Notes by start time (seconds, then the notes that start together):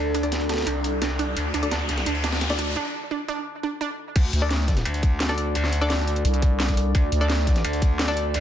Already playing: D2 D4 A4 D5, riser
0.14 D4, closed hi-hat
0.23 D4 A4 D5, closed hi-hat
0.32 snare, closed hi-hat
0.41 closed hi-hat
0.49 D4, snare, closed hi-hat
0.54 snare, closed hi-hat
0.58 snare, closed hi-hat
0.62 snare, closed hi-hat
0.67 C2 D4, closed hi-hat
0.84 closed hi-hat
1.02 D4, snare, closed hi-hat
1.19 D4, closed hi-hat
1.37 D2, closed hi-hat
1.54 D2 D4, closed hi-hat
1.63 D4 A4 D5, closed hi-hat
1.71 D4, snare, closed hi-hat
1.89 snare, closed hi-hat
1.98 snare, closed hi-hat
2.06 D2 D4, closed hi-hat
2.15 closed hi-hat
2.24 D4, snare, closed hi-hat
2.32 snare, closed hi-hat
2.41 snare, closed hi-hat
2.50 D4 A4 D5, snare, closed hi-hat
2.59 D4, closed hi-hat
2.76 D4
3.11 D4
3.28 D4
3.63 D4
3.81 D4
4.16 D2 D4 A4 D5, kick, closed hi-hat, crash
4.33 D2, closed hi-hat
4.42 D4 A4 D5
4.51 snare, closed hi-hat
4.68 kick, snare, closed hi-hat
4.77 snare, closed hi-hat
4.85 D2, closed hi-hat
4.94 closed hi-hat
5.03 kick, closed hi-hat
5.20 snare, closed hi-hat
5.29 D4 A4 D5, snare, closed hi-hat
5.38 closed hi-hat
5.55 closed hi-hat
5.64 snare
5.73 closed hi-hat
5.81 D4 A4 D5
5.90 snare, closed hi-hat
5.99 closed hi-hat
6.08 closed hi-hat
6.16 closed hi-hat
6.25 C2, closed hi-hat
6.34 closed hi-hat
6.42 kick, closed hi-hat
6.60 snare, closed hi-hat
6.69 kick, closed hi-hat
6.77 closed hi-hat
6.95 D2, kick, closed hi-hat
7.12 D2, closed hi-hat
7.21 D4 A4 D5
7.30 snare, closed hi-hat
7.47 kick, snare, closed hi-hat
7.56 snare, closed hi-hat
7.64 D2, closed hi-hat
7.73 closed hi-hat
7.82 kick, closed hi-hat
7.99 snare, closed hi-hat
8.08 D4 A4 D5, snare, closed hi-hat
8.17 closed hi-hat
8.34 closed hi-hat